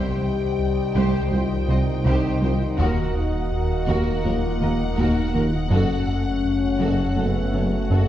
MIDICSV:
0, 0, Header, 1, 13, 480
1, 0, Start_track
1, 0, Tempo, 731707
1, 1826, Time_signature, 4, 2, 24, 8
1, 5302, End_track
2, 0, Start_track
2, 0, Title_t, "Violin section"
2, 0, Program_c, 0, 48
2, 0, Note_on_c, 0, 79, 58
2, 1797, Note_off_c, 0, 79, 0
2, 1825, Note_on_c, 0, 78, 63
2, 5302, Note_off_c, 0, 78, 0
2, 5302, End_track
3, 0, Start_track
3, 0, Title_t, "Viola section"
3, 0, Program_c, 1, 48
3, 0, Note_on_c, 1, 72, 69
3, 130, Note_off_c, 1, 72, 0
3, 630, Note_on_c, 1, 72, 69
3, 851, Note_off_c, 1, 72, 0
3, 869, Note_on_c, 1, 72, 46
3, 921, Note_off_c, 1, 72, 0
3, 1108, Note_on_c, 1, 72, 57
3, 1160, Note_off_c, 1, 72, 0
3, 1348, Note_on_c, 1, 72, 74
3, 1570, Note_off_c, 1, 72, 0
3, 1588, Note_on_c, 1, 72, 57
3, 1641, Note_off_c, 1, 72, 0
3, 1824, Note_on_c, 1, 70, 74
3, 2048, Note_off_c, 1, 70, 0
3, 2547, Note_on_c, 1, 70, 69
3, 2770, Note_off_c, 1, 70, 0
3, 2785, Note_on_c, 1, 70, 51
3, 2838, Note_off_c, 1, 70, 0
3, 3027, Note_on_c, 1, 70, 54
3, 3079, Note_off_c, 1, 70, 0
3, 3264, Note_on_c, 1, 70, 66
3, 3488, Note_off_c, 1, 70, 0
3, 3507, Note_on_c, 1, 70, 62
3, 3559, Note_off_c, 1, 70, 0
3, 3750, Note_on_c, 1, 69, 67
3, 3971, Note_off_c, 1, 69, 0
3, 4467, Note_on_c, 1, 69, 62
3, 4690, Note_off_c, 1, 69, 0
3, 4707, Note_on_c, 1, 69, 47
3, 4760, Note_off_c, 1, 69, 0
3, 4945, Note_on_c, 1, 69, 41
3, 4997, Note_off_c, 1, 69, 0
3, 5183, Note_on_c, 1, 69, 56
3, 5302, Note_off_c, 1, 69, 0
3, 5302, End_track
4, 0, Start_track
4, 0, Title_t, "Violin section"
4, 0, Program_c, 2, 48
4, 0, Note_on_c, 2, 67, 62
4, 132, Note_off_c, 2, 67, 0
4, 624, Note_on_c, 2, 67, 62
4, 848, Note_off_c, 2, 67, 0
4, 868, Note_on_c, 2, 72, 48
4, 921, Note_off_c, 2, 72, 0
4, 1110, Note_on_c, 2, 75, 59
4, 1163, Note_off_c, 2, 75, 0
4, 1347, Note_on_c, 2, 67, 72
4, 1569, Note_off_c, 2, 67, 0
4, 1589, Note_on_c, 2, 72, 52
4, 1642, Note_off_c, 2, 72, 0
4, 1824, Note_on_c, 2, 66, 72
4, 2048, Note_off_c, 2, 66, 0
4, 2542, Note_on_c, 2, 66, 70
4, 2767, Note_off_c, 2, 66, 0
4, 2787, Note_on_c, 2, 70, 53
4, 2840, Note_off_c, 2, 70, 0
4, 3025, Note_on_c, 2, 75, 48
4, 3078, Note_off_c, 2, 75, 0
4, 3264, Note_on_c, 2, 66, 70
4, 3488, Note_off_c, 2, 66, 0
4, 3502, Note_on_c, 2, 70, 50
4, 3555, Note_off_c, 2, 70, 0
4, 3742, Note_on_c, 2, 66, 70
4, 3967, Note_off_c, 2, 66, 0
4, 4462, Note_on_c, 2, 66, 58
4, 4687, Note_off_c, 2, 66, 0
4, 4706, Note_on_c, 2, 69, 43
4, 4758, Note_off_c, 2, 69, 0
4, 4947, Note_on_c, 2, 73, 44
4, 5000, Note_off_c, 2, 73, 0
4, 5191, Note_on_c, 2, 66, 58
4, 5302, Note_off_c, 2, 66, 0
4, 5302, End_track
5, 0, Start_track
5, 0, Title_t, "Analog synth pad"
5, 0, Program_c, 3, 89
5, 0, Note_on_c, 3, 55, 64
5, 0, Note_on_c, 3, 63, 64
5, 0, Note_on_c, 3, 72, 65
5, 0, Note_on_c, 3, 75, 64
5, 1825, Note_off_c, 3, 55, 0
5, 1828, Note_off_c, 3, 72, 0
5, 1828, Note_on_c, 3, 58, 66
5, 1829, Note_on_c, 3, 70, 64
5, 3746, Note_on_c, 3, 57, 69
5, 3747, Note_off_c, 3, 58, 0
5, 3747, Note_off_c, 3, 70, 0
5, 3748, Note_on_c, 3, 61, 70
5, 3748, Note_on_c, 3, 66, 64
5, 3748, Note_on_c, 3, 78, 69
5, 3749, Note_off_c, 3, 75, 0
5, 3750, Note_off_c, 3, 63, 0
5, 5302, Note_off_c, 3, 57, 0
5, 5302, Note_off_c, 3, 61, 0
5, 5302, Note_off_c, 3, 66, 0
5, 5302, Note_off_c, 3, 78, 0
5, 5302, End_track
6, 0, Start_track
6, 0, Title_t, "French horn section"
6, 0, Program_c, 4, 60
6, 0, Note_on_c, 4, 67, 103
6, 849, Note_off_c, 4, 67, 0
6, 863, Note_on_c, 4, 65, 96
6, 1344, Note_off_c, 4, 65, 0
6, 1344, Note_on_c, 4, 63, 91
6, 1585, Note_off_c, 4, 63, 0
6, 1589, Note_on_c, 4, 65, 82
6, 1705, Note_off_c, 4, 65, 0
6, 1710, Note_on_c, 4, 63, 79
6, 1828, Note_off_c, 4, 63, 0
6, 1835, Note_on_c, 4, 66, 106
6, 2785, Note_on_c, 4, 65, 93
6, 2790, Note_off_c, 4, 66, 0
6, 3265, Note_off_c, 4, 65, 0
6, 3272, Note_on_c, 4, 63, 85
6, 3507, Note_on_c, 4, 65, 84
6, 3509, Note_off_c, 4, 63, 0
6, 3626, Note_off_c, 4, 65, 0
6, 3630, Note_on_c, 4, 63, 78
6, 3746, Note_on_c, 4, 61, 93
6, 3748, Note_off_c, 4, 63, 0
6, 4686, Note_off_c, 4, 61, 0
6, 4708, Note_on_c, 4, 59, 72
6, 5073, Note_off_c, 4, 59, 0
6, 5184, Note_on_c, 4, 57, 68
6, 5302, Note_off_c, 4, 57, 0
6, 5302, End_track
7, 0, Start_track
7, 0, Title_t, "Trombone section"
7, 0, Program_c, 5, 61
7, 0, Note_on_c, 5, 51, 70
7, 0, Note_on_c, 5, 55, 62
7, 1799, Note_off_c, 5, 55, 0
7, 1824, Note_on_c, 5, 58, 73
7, 3637, Note_off_c, 5, 51, 0
7, 3637, Note_off_c, 5, 58, 0
7, 3748, Note_on_c, 5, 57, 74
7, 3751, Note_on_c, 5, 49, 70
7, 5302, Note_off_c, 5, 49, 0
7, 5302, Note_off_c, 5, 57, 0
7, 5302, End_track
8, 0, Start_track
8, 0, Title_t, "Synth arpeggio sound"
8, 0, Program_c, 6, 84
8, 626, Note_on_c, 6, 48, 79
8, 770, Note_off_c, 6, 48, 0
8, 867, Note_on_c, 6, 51, 54
8, 1010, Note_off_c, 6, 51, 0
8, 1106, Note_on_c, 6, 55, 58
8, 1250, Note_off_c, 6, 55, 0
8, 1347, Note_on_c, 6, 48, 82
8, 1491, Note_off_c, 6, 48, 0
8, 1586, Note_on_c, 6, 55, 61
8, 1730, Note_off_c, 6, 55, 0
8, 1823, Note_on_c, 6, 51, 78
8, 1968, Note_off_c, 6, 51, 0
8, 2544, Note_on_c, 6, 51, 81
8, 2689, Note_off_c, 6, 51, 0
8, 2782, Note_on_c, 6, 54, 57
8, 2927, Note_off_c, 6, 54, 0
8, 3021, Note_on_c, 6, 58, 57
8, 3167, Note_off_c, 6, 58, 0
8, 3260, Note_on_c, 6, 51, 86
8, 3406, Note_off_c, 6, 51, 0
8, 3501, Note_on_c, 6, 58, 59
8, 3647, Note_off_c, 6, 58, 0
8, 3741, Note_on_c, 6, 54, 86
8, 3887, Note_off_c, 6, 54, 0
8, 4461, Note_on_c, 6, 54, 80
8, 4607, Note_off_c, 6, 54, 0
8, 4702, Note_on_c, 6, 57, 56
8, 4847, Note_off_c, 6, 57, 0
8, 4941, Note_on_c, 6, 61, 59
8, 5086, Note_off_c, 6, 61, 0
8, 5181, Note_on_c, 6, 54, 78
8, 5302, Note_off_c, 6, 54, 0
8, 5302, End_track
9, 0, Start_track
9, 0, Title_t, "Analog synth bass"
9, 0, Program_c, 7, 38
9, 143, Note_on_c, 7, 36, 58
9, 288, Note_off_c, 7, 36, 0
9, 385, Note_on_c, 7, 36, 52
9, 529, Note_off_c, 7, 36, 0
9, 621, Note_on_c, 7, 36, 80
9, 767, Note_off_c, 7, 36, 0
9, 862, Note_on_c, 7, 36, 60
9, 1007, Note_off_c, 7, 36, 0
9, 1104, Note_on_c, 7, 48, 60
9, 1248, Note_off_c, 7, 48, 0
9, 1343, Note_on_c, 7, 36, 78
9, 1488, Note_off_c, 7, 36, 0
9, 1584, Note_on_c, 7, 48, 59
9, 1728, Note_off_c, 7, 48, 0
9, 1826, Note_on_c, 7, 39, 83
9, 1970, Note_off_c, 7, 39, 0
9, 2066, Note_on_c, 7, 39, 59
9, 2210, Note_off_c, 7, 39, 0
9, 2306, Note_on_c, 7, 39, 58
9, 2450, Note_off_c, 7, 39, 0
9, 2546, Note_on_c, 7, 39, 77
9, 2690, Note_off_c, 7, 39, 0
9, 2788, Note_on_c, 7, 39, 64
9, 2932, Note_off_c, 7, 39, 0
9, 3029, Note_on_c, 7, 51, 59
9, 3172, Note_off_c, 7, 51, 0
9, 3269, Note_on_c, 7, 39, 80
9, 3412, Note_off_c, 7, 39, 0
9, 3509, Note_on_c, 7, 51, 57
9, 3652, Note_off_c, 7, 51, 0
9, 3747, Note_on_c, 7, 42, 79
9, 3890, Note_off_c, 7, 42, 0
9, 3985, Note_on_c, 7, 42, 54
9, 4129, Note_off_c, 7, 42, 0
9, 4225, Note_on_c, 7, 42, 52
9, 4369, Note_off_c, 7, 42, 0
9, 4464, Note_on_c, 7, 42, 84
9, 4609, Note_off_c, 7, 42, 0
9, 4705, Note_on_c, 7, 42, 57
9, 4849, Note_off_c, 7, 42, 0
9, 4945, Note_on_c, 7, 54, 56
9, 5089, Note_off_c, 7, 54, 0
9, 5183, Note_on_c, 7, 42, 77
9, 5302, Note_off_c, 7, 42, 0
9, 5302, End_track
10, 0, Start_track
10, 0, Title_t, "Cello section"
10, 0, Program_c, 8, 48
10, 629, Note_on_c, 8, 36, 68
10, 682, Note_off_c, 8, 36, 0
10, 870, Note_on_c, 8, 36, 47
10, 923, Note_off_c, 8, 36, 0
10, 1109, Note_on_c, 8, 36, 54
10, 1162, Note_off_c, 8, 36, 0
10, 1349, Note_on_c, 8, 36, 78
10, 1401, Note_off_c, 8, 36, 0
10, 1587, Note_on_c, 8, 36, 51
10, 1639, Note_off_c, 8, 36, 0
10, 1824, Note_on_c, 8, 39, 76
10, 1877, Note_off_c, 8, 39, 0
10, 2542, Note_on_c, 8, 39, 72
10, 2594, Note_off_c, 8, 39, 0
10, 2785, Note_on_c, 8, 39, 47
10, 2837, Note_off_c, 8, 39, 0
10, 3025, Note_on_c, 8, 39, 51
10, 3077, Note_off_c, 8, 39, 0
10, 3263, Note_on_c, 8, 39, 69
10, 3316, Note_off_c, 8, 39, 0
10, 3503, Note_on_c, 8, 39, 50
10, 3555, Note_off_c, 8, 39, 0
10, 3742, Note_on_c, 8, 42, 70
10, 3795, Note_off_c, 8, 42, 0
10, 4463, Note_on_c, 8, 42, 64
10, 4515, Note_off_c, 8, 42, 0
10, 4703, Note_on_c, 8, 42, 43
10, 4756, Note_off_c, 8, 42, 0
10, 4947, Note_on_c, 8, 42, 46
10, 4999, Note_off_c, 8, 42, 0
10, 5188, Note_on_c, 8, 42, 60
10, 5240, Note_off_c, 8, 42, 0
10, 5302, End_track
11, 0, Start_track
11, 0, Title_t, "Double bass section"
11, 0, Program_c, 10, 48
11, 625, Note_on_c, 10, 36, 70
11, 677, Note_off_c, 10, 36, 0
11, 866, Note_on_c, 10, 36, 53
11, 919, Note_off_c, 10, 36, 0
11, 1108, Note_on_c, 10, 36, 54
11, 1161, Note_off_c, 10, 36, 0
11, 1347, Note_on_c, 10, 36, 71
11, 1399, Note_off_c, 10, 36, 0
11, 1589, Note_on_c, 10, 36, 55
11, 1641, Note_off_c, 10, 36, 0
11, 1827, Note_on_c, 10, 39, 74
11, 1880, Note_off_c, 10, 39, 0
11, 2544, Note_on_c, 10, 39, 73
11, 2596, Note_off_c, 10, 39, 0
11, 2783, Note_on_c, 10, 39, 49
11, 2836, Note_off_c, 10, 39, 0
11, 3024, Note_on_c, 10, 39, 50
11, 3076, Note_off_c, 10, 39, 0
11, 3267, Note_on_c, 10, 39, 69
11, 3319, Note_off_c, 10, 39, 0
11, 3507, Note_on_c, 10, 39, 50
11, 3559, Note_off_c, 10, 39, 0
11, 3745, Note_on_c, 10, 30, 67
11, 3798, Note_off_c, 10, 30, 0
11, 4463, Note_on_c, 10, 30, 67
11, 4515, Note_off_c, 10, 30, 0
11, 4705, Note_on_c, 10, 30, 45
11, 4757, Note_off_c, 10, 30, 0
11, 4948, Note_on_c, 10, 30, 46
11, 5000, Note_off_c, 10, 30, 0
11, 5184, Note_on_c, 10, 30, 54
11, 5237, Note_off_c, 10, 30, 0
11, 5302, End_track
12, 0, Start_track
12, 0, Title_t, "Tuba"
12, 0, Program_c, 11, 58
12, 627, Note_on_c, 11, 36, 72
12, 723, Note_off_c, 11, 36, 0
12, 869, Note_on_c, 11, 36, 53
12, 965, Note_off_c, 11, 36, 0
12, 1108, Note_on_c, 11, 36, 55
12, 1203, Note_off_c, 11, 36, 0
12, 1344, Note_on_c, 11, 36, 74
12, 1440, Note_off_c, 11, 36, 0
12, 1586, Note_on_c, 11, 36, 56
12, 1682, Note_off_c, 11, 36, 0
12, 1823, Note_on_c, 11, 39, 72
12, 1919, Note_off_c, 11, 39, 0
12, 2542, Note_on_c, 11, 39, 73
12, 2639, Note_off_c, 11, 39, 0
12, 2784, Note_on_c, 11, 39, 53
12, 2880, Note_off_c, 11, 39, 0
12, 3026, Note_on_c, 11, 39, 51
12, 3122, Note_off_c, 11, 39, 0
12, 3266, Note_on_c, 11, 39, 73
12, 3362, Note_off_c, 11, 39, 0
12, 3505, Note_on_c, 11, 39, 53
12, 3601, Note_off_c, 11, 39, 0
12, 3745, Note_on_c, 11, 30, 68
12, 3841, Note_off_c, 11, 30, 0
12, 4465, Note_on_c, 11, 30, 69
12, 4561, Note_off_c, 11, 30, 0
12, 4703, Note_on_c, 11, 30, 47
12, 4800, Note_off_c, 11, 30, 0
12, 4941, Note_on_c, 11, 30, 45
12, 5038, Note_off_c, 11, 30, 0
12, 5185, Note_on_c, 11, 30, 60
12, 5281, Note_off_c, 11, 30, 0
12, 5302, End_track
13, 0, Start_track
13, 0, Title_t, "Sub bass"
13, 0, Program_c, 12, 38
13, 0, Note_on_c, 12, 36, 64
13, 1826, Note_on_c, 12, 27, 64
13, 1836, Note_off_c, 12, 36, 0
13, 3746, Note_on_c, 12, 30, 59
13, 3756, Note_off_c, 12, 27, 0
13, 5302, Note_off_c, 12, 30, 0
13, 5302, End_track
0, 0, End_of_file